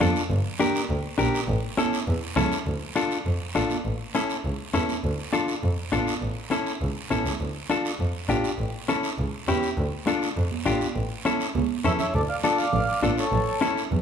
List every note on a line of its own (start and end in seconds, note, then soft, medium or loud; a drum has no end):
0.00 0.09 F2 medium
0.00 0.21 D4 medium
0.00 0.22 F4 medium
0.00 0.22 A4 loud
0.00 high conga medium
0.00 low conga medium
0.00 short guiro medium
0.16 short guiro medium
0.30 0.38 G1 loud
0.30 high conga soft
0.30 long guiro medium
0.59 0.81 D4 medium
0.59 0.81 G4 medium
0.59 0.81 A#4 medium
0.59 high conga medium
0.59 short guiro medium
0.75 short guiro medium
0.90 0.98 D2 medium
0.90 high conga soft
0.90 long guiro medium
1.18 1.27 A#1 medium
1.18 1.39 D4 medium
1.18 1.40 G4 medium
1.18 1.40 A#4 medium
1.18 high conga medium
1.18 short guiro medium
1.35 short guiro medium
1.48 1.56 A1 loud
1.48 high conga soft
1.48 long guiro medium
1.77 1.98 C#4 medium
1.77 1.99 E4 medium
1.77 1.99 A4 medium
1.77 high conga medium
1.77 short guiro medium
1.93 short guiro medium
2.07 2.15 E2 medium
2.07 long guiro medium
2.36 2.45 C#2 medium
2.36 2.57 C#4 medium
2.36 2.58 E4 medium
2.36 2.58 A4 medium
2.36 high conga medium
2.36 low conga medium
2.36 short guiro medium
2.52 short guiro medium
2.66 2.74 D2 medium
2.66 high conga soft
2.66 long guiro medium
2.96 3.17 D4 medium
2.96 3.17 F4 medium
2.96 3.17 A4 medium
2.96 high conga medium
2.96 short guiro medium
3.11 short guiro medium
3.26 3.34 F2 medium
3.26 high conga soft
3.26 long guiro medium
3.55 3.63 A1 medium
3.55 3.76 D4 medium
3.55 3.76 F4 medium
3.55 3.76 A4 medium
3.55 high conga medium
3.55 short guiro medium
3.70 high conga medium
3.70 short guiro medium
3.85 3.93 A1 medium
3.85 high conga soft
3.85 long guiro medium
4.15 4.35 C#4 medium
4.15 4.36 E4 medium
4.15 4.36 A4 medium
4.15 high conga medium
4.15 short guiro medium
4.30 short guiro medium
4.45 4.53 C#2 medium
4.45 high conga soft
4.45 long guiro medium
4.74 4.82 E2 medium
4.74 4.95 C#4 medium
4.74 4.95 E4 medium
4.74 4.95 A4 medium
4.74 high conga medium
4.74 short guiro medium
4.89 high conga medium
4.89 short guiro medium
5.04 5.12 D2 medium
5.04 high conga soft
5.04 long guiro medium
5.33 5.54 D4 medium
5.33 5.54 F4 medium
5.33 5.54 A4 medium
5.33 high conga loud
5.33 short guiro medium
5.48 short guiro medium
5.63 5.71 F2 medium
5.63 high conga soft
5.63 long guiro medium
5.92 6.01 A1 medium
5.92 6.13 D4 medium
5.92 6.13 F4 medium
5.92 6.13 A4 medium
5.92 high conga medium
5.92 short guiro medium
6.07 short guiro medium
6.22 6.30 A1 medium
6.22 high conga soft
6.22 long guiro medium
6.51 6.72 C#4 medium
6.51 6.72 E4 medium
6.51 6.73 A4 medium
6.51 high conga medium
6.51 short guiro medium
6.66 short guiro medium
6.81 6.89 C#2 medium
6.81 high conga soft
6.81 long guiro medium
7.10 7.18 A1 medium
7.10 7.32 C#4 medium
7.10 7.32 E4 medium
7.10 7.32 A4 medium
7.10 high conga medium
7.10 short guiro medium
7.25 7.33 C#2 medium
7.25 high conga medium
7.25 short guiro medium
7.40 7.48 D2 medium
7.40 high conga soft
7.40 long guiro medium
7.69 7.91 D4 medium
7.69 7.91 F4 medium
7.69 7.91 A4 medium
7.69 high conga medium
7.69 short guiro medium
7.85 short guiro medium
7.99 8.07 F2 medium
7.99 high conga soft
7.99 long guiro medium
8.29 8.37 A1 medium
8.29 8.50 D4 medium
8.29 8.50 F4 medium
8.29 8.50 G4 medium
8.29 high conga medium
8.29 short guiro medium
8.44 short guiro medium
8.59 8.67 A1 medium
8.59 high conga soft
8.59 long guiro medium
8.88 9.09 C#4 medium
8.88 9.09 E4 medium
8.88 9.10 A4 medium
8.88 high conga loud
8.88 short guiro medium
9.03 short guiro medium
9.18 9.26 C#2 medium
9.18 high conga soft
9.18 long guiro medium
9.48 9.56 E2 medium
9.48 9.69 C#4 medium
9.48 9.69 E4 medium
9.48 9.69 G4 medium
9.48 high conga medium
9.48 short guiro medium
9.63 short guiro medium
9.77 9.85 D2 medium
9.77 high conga soft
9.77 long guiro medium
10.07 10.28 D4 medium
10.07 10.28 F4 medium
10.07 10.28 A4 medium
10.07 high conga medium
10.07 short guiro medium
10.22 short guiro medium
10.37 10.45 F2 medium
10.37 high conga soft
10.37 long guiro medium
10.51 high conga medium
10.66 10.75 A1 medium
10.66 10.87 D4 medium
10.66 10.87 F4 medium
10.66 10.87 G4 medium
10.66 high conga medium
10.66 short guiro medium
10.81 high conga medium
10.81 short guiro medium
10.96 11.04 A1 medium
10.96 high conga soft
10.96 long guiro medium
11.25 11.46 C#4 medium
11.25 11.46 E4 medium
11.25 11.46 A4 medium
11.25 high conga medium
11.25 short guiro medium
11.40 short guiro medium
11.55 11.63 C#2 medium
11.55 high conga loud
11.55 long guiro medium
11.84 11.93 E2 medium
11.84 12.05 C#4 medium
11.84 12.05 E4 medium
11.84 12.06 A4 medium
11.84 11.92 C#5 medium
11.84 11.92 E5 medium
11.84 low conga medium
11.84 short guiro medium
11.99 12.14 C#5 medium
11.99 12.13 E5 medium
11.99 low conga medium
11.99 short guiro medium
12.14 12.22 D2 medium
12.14 12.22 A4 medium
12.14 12.21 D5 loud
12.14 high conga soft
12.14 long guiro medium
12.29 12.36 D5 medium
12.29 12.36 F5 medium
12.43 12.64 D4 medium
12.43 12.65 F4 medium
12.43 12.65 A4 medium
12.43 12.58 A4 medium
12.43 12.57 D5 medium
12.43 high conga medium
12.43 short guiro medium
12.58 13.00 D5 medium
12.58 13.00 F5 medium
12.58 short guiro medium
12.73 12.82 A1 medium
12.73 high conga soft
12.73 low conga medium
12.73 long guiro medium
13.03 13.11 A1 medium
13.03 13.23 D4 medium
13.03 13.24 F4 medium
13.03 13.24 A4 medium
13.03 13.10 A4 medium
13.03 13.10 D5 medium
13.03 high conga medium
13.03 short guiro medium
13.18 13.73 A4 medium
13.18 13.73 C#5 medium
13.18 short guiro medium
13.32 13.40 A1 medium
13.32 high conga soft
13.32 low conga medium
13.32 long guiro medium
13.61 13.82 C#4 medium
13.61 13.82 E4 medium
13.61 13.83 A4 medium
13.61 high conga loud
13.61 short guiro medium
13.77 short guiro medium
13.91 13.99 E2 medium
13.91 high conga soft
13.91 low conga medium
13.91 long guiro medium